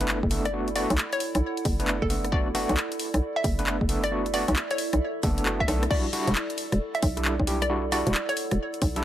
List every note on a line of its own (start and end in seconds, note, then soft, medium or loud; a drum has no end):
0.00 0.23 F#1 loud
0.00 0.17 A3 medium
0.00 0.17 B3 medium
0.00 0.17 D4 medium
0.00 9.04 E4 medium
0.00 9.04 A4 medium
0.00 0.17 B4 loud
0.00 9.04 D5 medium
0.00 closed hi-hat medium
0.08 clap loud
0.23 0.87 F#1 medium
0.23 kick medium
0.31 0.45 A3 medium
0.31 0.45 B3 medium
0.31 0.45 D4 medium
0.31 0.45 A4 loud
0.31 open hi-hat loud
0.45 0.63 D5 medium
0.45 cross-stick medium
0.45 closed hi-hat medium
0.53 0.68 A3 medium
0.53 0.68 B3 medium
0.53 0.68 D4 medium
0.53 0.68 F#4 medium
0.68 closed hi-hat soft
0.72 0.95 A3 loud
0.72 0.95 B3 medium
0.72 0.95 D4 medium
0.72 0.95 F#4 loud
0.72 0.96 D5 medium
0.72 3.68 F#5 medium
0.72 open hi-hat loud
0.90 0.97 B1 loud
0.90 closed hi-hat medium
0.98 clap loud
1.13 1.31 C#5 medium
1.13 closed hi-hat medium
1.20 open hi-hat loud
1.35 1.42 B1 medium
1.35 cross-stick medium
1.35 closed hi-hat medium
1.57 closed hi-hat soft
1.65 2.02 F#1 loud
1.65 kick loud
1.65 open hi-hat loud
1.80 1.96 A3 medium
1.80 1.96 B3 medium
1.80 1.96 D4 medium
1.80 1.96 B4 loud
1.80 closed hi-hat medium
1.88 clap loud
2.02 2.66 F#1 medium
2.02 2.20 A4 loud
2.02 kick medium
2.10 2.25 A3 medium
2.10 2.25 B3 medium
2.10 2.25 D4 medium
2.10 2.25 A4 loud
2.10 open hi-hat loud
2.25 cross-stick medium
2.25 closed hi-hat medium
2.32 2.47 A3 medium
2.32 2.47 B3 medium
2.32 2.47 D4 medium
2.32 2.47 F#4 loud
2.32 2.52 D5 loud
2.32 kick loud
2.55 2.74 A3 loud
2.55 2.74 B3 loud
2.55 2.74 D4 medium
2.55 2.74 F#4 loud
2.55 open hi-hat loud
2.69 2.76 B1 loud
2.69 closed hi-hat medium
2.77 clap loud
2.92 closed hi-hat medium
2.99 open hi-hat loud
3.14 3.21 B1 medium
3.14 cross-stick medium
3.14 closed hi-hat medium
3.36 3.54 E5 loud
3.44 3.81 F#1 loud
3.44 kick loud
3.44 open hi-hat loud
3.57 3.76 A3 medium
3.57 3.76 B3 medium
3.57 3.76 D4 medium
3.57 3.76 B4 loud
3.57 6.96 E5 medium
3.57 closed hi-hat medium
3.67 clap loud
3.81 4.45 F#1 medium
3.81 kick medium
3.89 4.04 A3 medium
3.89 4.04 B3 medium
3.89 4.04 D4 medium
3.89 4.04 A4 loud
3.89 open hi-hat loud
4.04 4.22 D5 loud
4.04 cross-stick medium
4.04 closed hi-hat medium
4.11 4.26 A3 medium
4.11 4.26 B3 medium
4.11 4.26 D4 medium
4.11 4.26 F#4 loud
4.26 closed hi-hat soft
4.34 4.53 A3 loud
4.34 4.53 B3 medium
4.34 4.53 D4 loud
4.34 4.53 F#4 loud
4.34 4.54 D5 loud
4.34 open hi-hat loud
4.48 4.55 B1 loud
4.48 closed hi-hat medium
4.56 clap loud
4.71 4.89 C#5 medium
4.71 closed hi-hat medium
4.78 open hi-hat loud
4.93 5.00 B1 medium
4.93 cross-stick medium
4.93 closed hi-hat medium
5.23 5.68 F#1 loud
5.23 5.44 A3 medium
5.23 5.44 B3 medium
5.23 5.44 D4 medium
5.23 5.44 A4 loud
5.23 kick loud
5.23 open hi-hat loud
5.38 closed hi-hat medium
5.45 5.60 A3 medium
5.45 5.60 B3 medium
5.45 5.60 D4 medium
5.45 5.60 F#4 medium
5.45 clap loud
5.60 5.78 E5 loud
5.60 kick medium
5.60 cross-stick medium
5.68 5.88 B1 medium
5.68 5.83 A3 loud
5.68 5.83 B3 medium
5.68 5.83 D4 loud
5.68 5.83 A4 loud
5.68 cross-stick medium
5.68 open hi-hat loud
5.83 cross-stick medium
5.83 closed hi-hat medium
5.90 6.05 G3 medium
5.90 6.05 D4 medium
5.90 6.05 E4 medium
5.90 6.05 F#4 loud
5.90 6.11 D5 loud
5.90 kick loud
5.90 crash loud
6.13 6.32 G3 loud
6.13 6.32 D4 medium
6.13 6.32 E4 medium
6.13 6.32 F#4 loud
6.13 open hi-hat loud
6.27 6.34 E1 loud
6.27 closed hi-hat medium
6.35 clap loud
6.50 closed hi-hat medium
6.58 open hi-hat loud
6.72 6.79 E1 medium
6.72 cross-stick medium
6.72 closed hi-hat medium
6.95 7.13 E5 medium
6.95 closed hi-hat soft
7.03 7.39 B1 loud
7.03 kick loud
7.03 open hi-hat loud
7.17 7.34 G3 medium
7.17 7.34 D4 medium
7.17 7.34 E4 medium
7.17 7.34 A4 loud
7.17 closed hi-hat medium
7.25 clap loud
7.40 8.03 B1 medium
7.40 9.04 F#5 medium
7.40 kick medium
7.47 7.62 G3 medium
7.47 7.62 D4 medium
7.47 7.62 E4 medium
7.47 7.62 G4 loud
7.47 open hi-hat loud
7.62 7.80 D5 medium
7.62 cross-stick medium
7.62 closed hi-hat medium
7.70 7.84 G3 medium
7.70 7.84 D4 medium
7.70 7.84 E4 medium
7.70 7.84 F#4 medium
7.92 8.11 G3 loud
7.92 8.11 D4 loud
7.92 8.11 E4 medium
7.92 8.11 F#4 loud
7.92 8.12 D5 loud
7.92 open hi-hat loud
8.07 8.13 E1 loud
8.07 closed hi-hat medium
8.14 clap loud
8.29 8.47 C#5 loud
8.29 closed hi-hat medium
8.37 open hi-hat loud
8.51 8.58 E1 medium
8.51 cross-stick medium
8.51 closed hi-hat medium
8.74 closed hi-hat soft
8.82 9.04 B1 loud
8.82 kick loud
8.82 open hi-hat loud
8.96 9.04 G3 medium
8.96 9.04 D4 medium
8.96 9.04 E4 medium
8.96 9.04 A4 loud
8.96 closed hi-hat medium